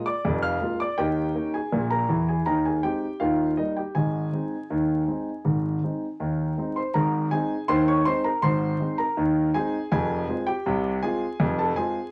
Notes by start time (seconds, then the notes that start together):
0.06 D5 D6
0.25 F1 F2
0.42 F5 F6
0.61 G#3 A#3 F4
0.80 D5 D6
0.98 D#2 D#3 G4 D#5 G5
1.35 A#3 C#4 D#4
1.54 G#4 G#5
1.72 A#1 A#2
1.90 A#4 A#5
2.09 E2 E3
2.29 G#4 G#5
2.46 D#2 D#3 A#4 A#5
2.65 G#4 G#5
2.83 G#3 C4 D#4 G4 G5
3.20 D#2 D#3 F4 F5
3.57 G3 A#3 D#4 D#5
3.77 G4 G5
3.95 G#1 G#2 G#4 D#5 G#5
4.33 G#3 C4 D#4
4.70 D#2 D#3
5.07 G#3 C4 D#4
5.45 G#1 G#2
5.83 G#3 C4 D#4
6.20 D#2 D#3
6.58 G#3 C4 D#4
6.76 C5 C6
6.94 G#1 G#2 A#4 A#5
7.31 G#3 C4 D#4 G#4 G#5
7.68 D#2 D#3 C5 C6
7.88 C#5 C#6
8.05 G#3 C4 D#4 C5 C6
8.24 A#4 A#5
8.42 G#1 G#2 C5 C6
8.80 G#3 C4 D#4
8.98 A#4 A#5
9.17 D#2 D#3
9.54 G#3 C4 D#4 G#4 G#5
9.92 F1 F2 G#4 G#5
10.29 G#3 C4 F4
10.47 G4 G5
10.66 C2 C3
11.02 G#3 C4 F4 G#4 G#5
11.40 F1 F2
11.59 A4 A5
11.76 G#3 C4 F4 G#4 G#5